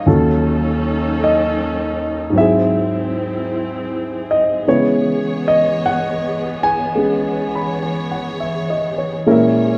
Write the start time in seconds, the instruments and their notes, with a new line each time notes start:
Already playing: string section F#3, grand piano F5
0.06 grand piano D#2 D#3 C#4 F#4 A4, string section C#4 D#4 A4
1.24 grand piano D#5
2.30 grand piano G#2 F#3, string section E4
2.35 string section C4 G#4, grand piano C4 E4 E5
2.41 grand piano G#4
4.31 grand piano D#5
4.68 grand piano C#3 G#3 B3 E4 B4 C#5, string section E3 B3 C#5
5.48 grand piano D#5
5.86 grand piano F#5
6.63 grand piano G#5
6.95 grand piano G#3 C#4 G#4, string section C#5
7.55 grand piano B5
7.83 grand piano G#5
8.11 grand piano F#5
8.40 grand piano E5
8.70 grand piano D#5
8.98 grand piano C#5
9.25 grand piano A#2 G#3 C#4 E4 A#4, string section A#3 C#4 C#5
9.31 grand piano E5